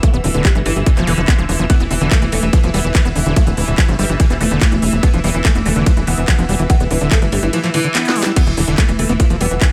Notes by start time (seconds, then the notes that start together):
Already playing: E3 E4 B4 E5 E6
0.03 E3 A3, kick, closed hi-hat
0.14 D1 B2 B3, closed hi-hat
0.24 D1 B2 D3, open hi-hat
0.34 D1 B2 D3, closed hi-hat
0.45 F3 G3, kick, clap, closed hi-hat
0.55 G1 B2 E3, closed hi-hat
0.66 G1 E3, open hi-hat
0.76 G1 B2, closed hi-hat
0.86 B2 D3, kick, closed hi-hat
0.97 E1 B2 F3, clap, closed hi-hat
1.07 E1 D3 E3, open hi-hat
1.18 E1 F3, closed hi-hat
1.28 B3, kick, clap, closed hi-hat
1.39 E1 F3, closed hi-hat
1.49 E1 F3, open hi-hat
1.59 E1 F3, closed hi-hat
1.70 E3 B3, kick, closed hi-hat, ride
1.80 E1 E3 B3, closed hi-hat
1.91 E1 D3 E3, open hi-hat
2.01 E1 D3 E3, closed hi-hat
2.11 F3 A3, kick, clap, closed hi-hat, ride
2.22 E1 E3, closed hi-hat
2.32 E1 A3, open hi-hat
2.43 E1 E3, closed hi-hat
2.53 E3 F3, kick, closed hi-hat, ride
2.64 E1 E3 F3, closed hi-hat
2.74 E1 G3 B3, open hi-hat
2.84 E1 E3, closed hi-hat
2.95 E3, kick, clap, closed hi-hat, ride
3.05 E1 B3, closed hi-hat
3.16 E1 D3, open hi-hat
3.26 E1 D3, closed hi-hat
3.36 F3 A3, kick, closed hi-hat, ride
3.47 D1 B2 E3, closed hi-hat
3.57 D1 B2, open hi-hat
3.68 D1 B2, closed hi-hat
3.78 F3 G3, kick, clap, closed hi-hat, ride
3.89 G1 B2 F3, closed hi-hat
3.99 G1 G3, open hi-hat
4.09 G1 B2 E3, closed hi-hat
4.20 B2 E3, kick, closed hi-hat, ride
4.30 E1 B2 B3, clap, closed hi-hat
4.41 E1 D3 A3, open hi-hat
4.51 E1 D3, closed hi-hat
4.61 F3, kick, clap, closed hi-hat, ride
4.72 E1 E3, closed hi-hat
4.82 E1, open hi-hat
4.93 E1, closed hi-hat
5.03 F3 B3, kick, closed hi-hat, ride
5.13 E1 E3 F3, closed hi-hat
5.24 E1 E3 G3, open hi-hat
5.34 E1 E3, closed hi-hat
5.45 E3 A3, kick, clap, closed hi-hat, ride
5.55 E1 E3 B3, closed hi-hat
5.66 E1 D3 A3, open hi-hat
5.76 E1 D3 E3, closed hi-hat
5.86 E3 F3, kick, closed hi-hat, ride
5.97 E1 E3, closed hi-hat
6.07 E1 B3, open hi-hat
6.18 E1, closed hi-hat
6.28 F3, kick, clap, closed hi-hat, ride
6.38 E1 F3, closed hi-hat
6.49 E1 G3, open hi-hat
6.59 E1 E3, closed hi-hat
6.70 E3 B3, kick, closed hi-hat, ride
6.80 D1 E3 B3, closed hi-hat
6.91 D1 D3 E3, open hi-hat
7.01 D1 D3 E3, closed hi-hat
7.11 F3 A3, kick, clap, closed hi-hat, ride
7.22 G1 E3, closed hi-hat
7.32 G1 G3, open hi-hat
7.43 G1 E3, closed hi-hat
7.53 E3 F3, closed hi-hat, ride
7.64 E3 F3, clap, closed hi-hat
7.74 D3 E3, open hi-hat
7.84 D3, closed hi-hat
7.95 B3, snare, clap, closed hi-hat, ride
8.05 snare, closed hi-hat
8.16 G3, open hi-hat
8.23 G3, snare, closed hi-hat
8.36 E3 B3, kick, closed hi-hat, crash, ride
8.47 E1 E3, closed hi-hat
8.57 E1 D3 E3, open hi-hat
8.68 E1 D3 E3, closed hi-hat
8.78 F3 A3, kick, clap, closed hi-hat, ride
8.88 E1 E3, closed hi-hat
8.99 E1 A3, open hi-hat
9.09 E1 E3 B3, closed hi-hat
9.20 E3 F3, kick, closed hi-hat, ride
9.30 E1 E3 F3, closed hi-hat
9.41 E1 G3 B3, open hi-hat
9.51 E1 E3, closed hi-hat
9.61 E3, kick, clap, closed hi-hat, ride